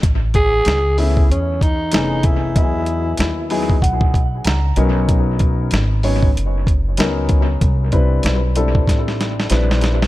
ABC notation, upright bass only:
X:1
M:4/4
L:1/8
Q:"Swing 16ths" 1/4=95
K:Alyd
V:1 name="Upright bass" clef=bass
A,,,2 C,,2 E,,2 =F,,,2 | E,,2 D,,2 B,,,2 C,, B,,,- | B,,,2 G,,,2 F,,,2 C,,2 | =C,,2 B,,,2 A,,,2 _B,,,2 |]